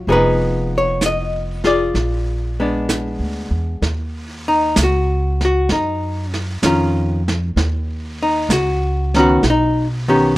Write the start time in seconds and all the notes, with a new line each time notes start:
0.07 F1 F3 B3 D#4 G#4, brush sweep
0.12 G#4 B4
0.78 C#5
1.01 brush sweep, snare, hi-hat pedal
1.06 D#5
1.64 F4 G#4 D5, snare
1.94 A#1, brush sweep, snare
2.60 G#3 B3 D4
2.89 brush sweep, snare, hi-hat pedal
3.19 D2
3.51 E2
3.82 D#2, brush sweep, snare
4.48 D#4
4.76 C#2, snare, hi-hat pedal
4.83 F#4
5.41 snare
5.45 F#4
5.69 F#2 D#4, brush sweep, snare
6.34 snare
6.62 F2 D#3 C#4 F4, snare, hi-hat pedal
7.28 snare
7.56 D#2, brush sweep, snare
8.23 D#4
8.49 C#2 F#4, snare, hi-hat pedal
9.14 D#3 B3 C#4, snare
9.19 F#4
9.43 B1, brush sweep, snare
9.50 D#4
10.08 D#3 B3 C#4 G4